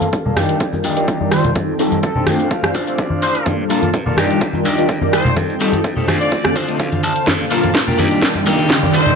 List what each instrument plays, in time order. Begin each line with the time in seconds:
Already playing: string machine A4 F5
0.01 muted slap bass stroke, closed hi-hat, high conga, maracas, shaker
0.13 slap bass G2, kick, closed hi-hat, shaker
0.25 analog polysynth D#3 G3 F4 A#4 D5, clean electric guitar A#3 F4 A4, low conga
0.36 slap bass D#2, string machine D#3 D5 G5, clean electric guitar D4 D#4 G4, cross-stick, open hi-hat, high conga, shaker, maracas
0.49 closed hi-hat, shaker, maracas
0.60 slap bass D#2, kick, closed hi-hat, shaker
0.73 analog polysynth G3 D4 D#4 F4 A#4, muted clean electric guitar stroke, high conga, shaker, maracas
0.84 slap bass A#1, clean electric guitar D4 D#4 G4, open hi-hat, shaker
0.97 analog polysynth G3 D4 D#4 F4 A#4, closed hi-hat, shaker
1.08 slap bass D#2, kick, closed hi-hat, shaker
1.20 analog polysynth D#3 G3 F4 A#4 D5, high conga, maracas
1.32 slap bass A#1, trumpet section C5, cross-stick, open hi-hat, shaker
1.44 closed hi-hat, low conga, shaker, maracas
1.55 slap bass F2, analog polysynth G3 C4 D#4 F4 A4, string machine A4, kick, closed hi-hat, high conga, maracas, shaker
1.68 maracas
1.79 slap bass F1, analog polysynth G3 C4 D#4 F4 A4, clean electric guitar D#4 G4 A4, open hi-hat, shaker
1.92 muted slap bass stroke, closed hi-hat, high conga, maracas, shaker
2.03 slap bass F2, trumpet section A4, kick, closed hi-hat, shaker, maracas
2.15 analog polysynth A3 C4 D4 F4 A4, clean electric guitar D#4 G4 C5, low conga
2.26 slap bass D2, clean electric guitar D4 F4 C5 G5, string machine D4 C5 F5, cross-stick, open hi-hat, high conga, shaker, maracas
2.39 closed hi-hat, maracas, shaker
2.51 slap bass D2, analog polysynth A3 C4 D4 F4 A4, clean electric guitar F5, kick, closed hi-hat, maracas, shaker
2.63 analog polysynth A3 C4 D4 F4 A4, muted clean electric guitar stroke, cross-stick, high conga, maracas, shaker
2.74 slap bass A1, clean electric guitar D4 F4 C5 D5, kick, open hi-hat, shaker
2.87 analog polysynth A3 C4 D4 F4 A4, closed hi-hat, maracas, shaker
2.98 slap bass D2, clean electric guitar D5, kick, closed hi-hat, shaker
3.10 high conga, maracas
3.22 slap bass A1, trumpet section C5, open hi-hat, shaker
3.35 closed hi-hat, shaker, maracas
3.46 slap bass G2, analog polysynth G3 A#3 D4 F4 A4, string machine A#3 F4 A5, kick, closed hi-hat, high conga, shaker, maracas
3.60 maracas
3.69 slap bass G1, analog polysynth G3 A#3 D4 F4 A#4, clean electric guitar A#3 F4 A4, open hi-hat, shaker, maracas
3.82 closed hi-hat, high conga, maracas, shaker
3.94 slap bass G2, kick, closed hi-hat, shaker
4.06 analog polysynth D#3 G3 F4 A#4 D5, clean electric guitar A#3 F4 A4, low conga
4.17 slap bass D#2, string machine D#3 D5 G5, clean electric guitar D4 D#4 G4, cross-stick, open hi-hat, high conga, maracas, shaker
4.29 closed hi-hat, maracas, shaker
4.41 slap bass D#2, kick, closed hi-hat, maracas, shaker
4.53 analog polysynth G3 D4 D#4 F4 A#4, muted clean electric guitar stroke, high conga, maracas, shaker
4.64 slap bass A#1, clean electric guitar D4 D#4 G4, open hi-hat, maracas, shaker
4.77 analog polysynth G3 D4 D#4 F4 A#4, closed hi-hat, maracas, shaker
4.89 slap bass D#2, kick, closed hi-hat, shaker
5.01 analog polysynth D#3 G3 F4 A#4 D5, high conga, maracas
5.13 slap bass A#1, trumpet section C5, cross-stick, open hi-hat, maracas, shaker
5.25 closed hi-hat, low conga, maracas, shaker
5.36 slap bass F2, analog polysynth G3 C4 D#4 F4 A4, string machine D#4 A4, kick, closed hi-hat, high conga, shaker, maracas
5.49 maracas, shaker
5.60 slap bass F1, analog polysynth G3 C4 D#4 F4 A4, clean electric guitar D#4 G4 A4, open hi-hat, maracas, shaker
5.73 muted slap bass stroke, closed hi-hat, high conga, shaker, maracas
5.84 slap bass F2, kick, closed hi-hat, shaker
5.96 analog polysynth A3 C4 D4 F4 A4, clean electric guitar D#4 G4 A4, low conga
6.07 slap bass D2, string machine D3 C5 F5, clean electric guitar D4 F4 C5, cross-stick, open hi-hat, high conga, maracas, shaker
6.21 trumpet section D5, closed hi-hat, maracas, shaker
6.31 slap bass D2, analog polysynth A3 C4 D4 F4 A4, kick, closed hi-hat, maracas, shaker
6.44 analog polysynth A3 C4 D4 F4 A4, muted clean electric guitar stroke, cross-stick, high conga, maracas, shaker
6.55 slap bass A1, clean electric guitar D4 F4 C5, kick, open hi-hat, shaker, maracas
6.68 analog polysynth A3 C4 D4 F4 A4, clean electric guitar D#5, muted slap bass stroke, closed hi-hat, shaker, maracas
6.80 slap bass D2, clean electric guitar F5, kick, closed hi-hat, shaker, maracas
6.92 closed hi-hat, high conga, maracas
7.03 slap bass A1, clean electric guitar A5, open hi-hat, maracas, shaker
7.16 closed hi-hat, shaker, maracas
7.27 slap bass G2, analog polysynth G3 A#3 D4 F4 A4, string machine A#3 F4 A5, kick, snare, closed hi-hat, riser, high conga, shaker, maracas
7.40 maracas
7.50 slap bass G1, analog polysynth G3 A#3 D4 F4 A#4, clean electric guitar A#3 F4 A4, open hi-hat, shaker, maracas
7.63 closed hi-hat, high conga, shaker, maracas
7.75 slap bass G2, kick, snare, closed hi-hat, shaker
7.87 analog polysynth G3 D4 F4 A#4, clean electric guitar A#3 F4 G4, low conga
7.98 slap bass D#2, string machine D#3 D5 G5, clean electric guitar D4 D#4 G4, open hi-hat, high conga, shaker, maracas
8.11 closed hi-hat, maracas, shaker
8.22 slap bass D#2, analog polysynth G3 A#3 D4 F4 A4, kick, snare, closed hi-hat, shaker
8.34 muted clean electric guitar stroke, high conga, shaker, maracas
8.46 slap bass A#1, analog polysynth G3 A#3 D4 F4 A#4, clean electric guitar D4 D#4 G4, open hi-hat, maracas, shaker
8.59 closed hi-hat, shaker, maracas
8.70 slap bass D#2, kick, snare, closed hi-hat, shaker
8.83 analog polysynth D#3 G3 F4 A#4 D5, high conga, maracas
8.93 slap bass A#1, trumpet section C5, open hi-hat, shaker, maracas
9.06 closed hi-hat, low conga, shaker, maracas